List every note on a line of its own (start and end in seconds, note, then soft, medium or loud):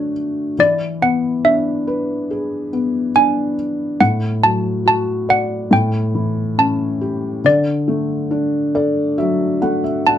0.00 0.54 D3 medium
0.00 0.54 A3 soft
0.00 0.56 D4 soft
0.00 0.53 F#4 medium
0.00 0.11 A4 medium
0.00 0.61 C#5 medium
0.59 3.96 E3 medium
0.59 1.03 D5 medium
1.02 2.68 B3 soft
1.02 1.45 F#5 medium
1.45 3.11 D4 medium
1.45 3.20 E5 medium
1.87 3.54 B4 medium
2.31 3.97 G#4 medium
2.73 3.97 B3 soft
3.16 3.98 D4 soft
3.16 4.03 G#5 medium
4.01 5.68 A2 medium
4.01 4.44 F#5 medium
4.43 5.68 F#3 soft
4.43 4.86 A5 medium
4.86 5.69 F#4 medium
4.86 5.31 A5 medium
5.29 5.70 D5 medium
5.29 5.74 F#5 medium
5.71 7.40 A2 medium
5.71 6.61 G5 medium
6.14 7.41 E3 soft
6.58 7.42 C#4 soft
6.58 7.48 A5 medium
7.01 7.43 G4 medium
7.44 10.18 D3 medium
7.44 10.03 D5 medium
7.88 9.58 A3 soft
8.31 10.02 D4 medium
8.75 10.18 A4 medium
8.75 9.15 D5 medium
9.18 10.18 F#3 medium
9.18 9.59 E5 medium
9.62 10.18 A3 soft
9.62 9.82 F#5 medium
9.84 10.05 E5 medium
10.07 10.18 D4 soft
10.07 10.18 F#5 medium
10.07 10.18 A5 medium